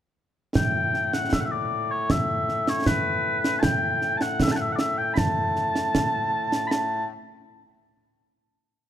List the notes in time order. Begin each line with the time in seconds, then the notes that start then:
0.55 A2 A3 G5, concert bass drum, snare
0.94 snare
1.13 F#5, snare
1.33 E5, concert bass drum, snare
1.41 F#5
1.45 E5
1.51 D5
1.91 C#5
2.10 E5, concert bass drum, snare
2.49 snare
2.67 C#5, snare
2.86 B4, concert bass drum, snare
3.44 snare
3.59 G5 A5, concert bass drum, snare
4.01 snare
4.17 A5, snare
4.22 F#5
4.40 E5, concert bass drum, snare
4.52 A5
4.56 F#5
4.61 E5
4.72 D5 F#5
4.79 E5, snare
4.98 G5
5.14 B5, concert bass drum, snare
5.18 A5
5.56 snare
5.75 snare
5.95 concert bass drum, snare
6.52 snare
6.67 A5 B5
6.71 snare